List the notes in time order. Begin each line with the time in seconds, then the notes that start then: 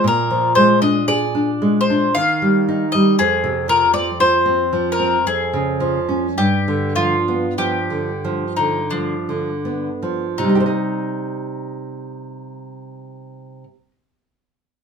0.04 A#2 A#4
0.30 F3
0.55 G#3 C5
0.82 D4 D#5
1.08 G#4 D5
1.35 D4
1.62 G#3
1.81 C5
1.90 D4
2.15 D#3 F5
2.42 G3
2.68 D#4
2.92 G3 D#5
3.19 F2 G#4
3.44 C3
3.68 F3 A#4
3.93 C4 D5
4.20 F4 C5
4.46 C4
4.73 F3
4.92 A#4
5.00 C4
5.27 F2 G#4
5.53 C#3
5.80 F3
6.09 C#4
6.37 G2 G4
6.68 D3
6.96 F3 F4
7.28 B3
7.58 F3 G4
7.90 D3
8.25 F3
8.56 D3 D#4
8.91 F3 D4
9.29 D3
9.65 B3
10.03 F3
10.38 C3 D#4
10.44 G3
10.49 D#4
10.55 G4
10.60 C5
10.66 D#5